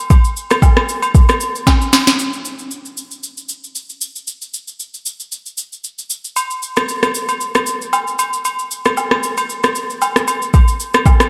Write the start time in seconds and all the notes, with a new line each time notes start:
0.10 kick, high agogo, shaker
0.24 shaker
0.37 shaker
0.50 cross-stick, high agogo, shaker
0.62 kick, low woodblock, shaker
0.77 cross-stick, high agogo
0.89 shaker
1.02 high agogo, shaker
1.15 kick, shaker
1.29 cross-stick, high agogo, shaker
1.40 shaker
1.55 shaker
1.67 kick, snare, high agogo, low woodblock, shaker
1.81 shaker
1.93 snare, open hi-hat, high agogo, shaker
2.07 snare, shaker
2.19 shaker
2.33 shaker
2.45 shaker
2.59 shaker
2.71 shaker
2.85 shaker
2.97 shaker
3.11 shaker
3.23 shaker
3.37 shaker
3.49 shaker
3.64 shaker
3.75 shaker
3.90 shaker
4.01 shaker
4.16 shaker
4.27 shaker
4.42 shaker
4.54 shaker
4.68 shaker
4.80 shaker
4.94 shaker
5.06 shaker
5.20 shaker
5.32 shaker
5.46 shaker
5.57 shaker
5.73 shaker
5.84 shaker
5.99 shaker
6.10 shaker
6.24 shaker
6.36 high agogo, shaker
6.51 shaker
6.62 shaker
6.76 cross-stick, high agogo, shaker
6.88 shaker
7.03 cross-stick, high agogo, shaker
7.15 shaker
7.29 high agogo, shaker
7.41 shaker
7.55 cross-stick, high agogo, shaker
7.66 shaker
7.82 shaker
7.93 high agogo, low woodblock, shaker
8.07 shaker
8.19 high agogo, shaker
8.33 shaker
8.45 high agogo, shaker
8.59 shaker
8.71 shaker
8.85 cross-stick, high agogo, shaker
8.97 low woodblock, shaker
9.11 cross-stick, high agogo
9.23 shaker
9.37 high agogo, shaker
9.49 shaker
9.63 cross-stick, high agogo, shaker
9.75 shaker
9.90 shaker
10.02 high agogo, low woodblock, shaker
10.16 cross-stick, shaker
10.28 high agogo, shaker
10.42 shaker
10.54 kick, high agogo, shaker
10.68 shaker
10.80 shaker
10.94 cross-stick, high agogo, shaker
11.06 kick, low woodblock, shaker
11.20 cross-stick, high agogo, shaker